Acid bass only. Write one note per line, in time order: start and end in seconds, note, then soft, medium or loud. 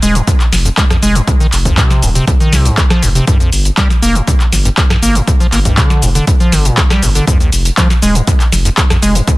0.03 0.17 G#3 loud
0.15 0.22 F2 loud
0.27 0.32 F2 loud
0.65 0.69 F2 medium
0.78 0.85 G#3 medium
0.90 0.97 F2 medium
1.03 1.17 G#3 loud
1.15 1.22 F2 loud
1.28 1.32 F2 medium
1.40 1.47 D#3 medium
1.65 1.79 F2 medium
1.78 2.04 C3 loud
2.02 2.10 F2 medium
2.15 2.25 C3 medium
2.27 2.32 F2 medium
2.40 2.54 D#3 medium
2.53 2.67 C3 medium
2.65 2.79 G#2 medium
2.78 2.82 C3 loud
2.90 3.04 F3 medium
3.02 3.10 F2 medium
3.15 3.25 C3 medium
3.27 3.38 G2 medium
3.40 3.50 F2 medium
3.78 3.88 G3 loud
4.02 4.17 A#3 loud
4.15 4.22 G2 loud
4.27 4.32 G2 loud
4.65 4.69 G2 medium
4.90 4.97 G2 medium
5.02 5.17 A#3 loud
5.15 5.22 G2 loud
5.27 5.32 G2 medium
5.40 5.47 F3 medium
5.52 5.60 A#3 medium
5.65 5.79 G2 medium
5.77 6.04 D3 loud
6.02 6.10 G2 medium
6.15 6.25 D3 medium
6.27 6.32 G2 medium
6.40 6.54 F3 medium
6.52 6.67 D3 medium
6.65 6.79 A#2 medium
6.77 6.82 D3 loud
6.90 7.04 G3 medium
7.02 7.10 G2 medium
7.15 7.25 D3 medium
7.27 7.38 F2 medium
7.40 7.50 D#2 medium
7.77 7.88 F3 loud
8.02 8.17 G#3 loud
8.15 8.22 F2 loud
8.28 8.32 F2 loud
8.65 8.69 F2 medium
8.90 8.97 F2 medium
9.03 9.17 G#3 loud
9.15 9.22 F2 loud
9.28 9.32 F2 medium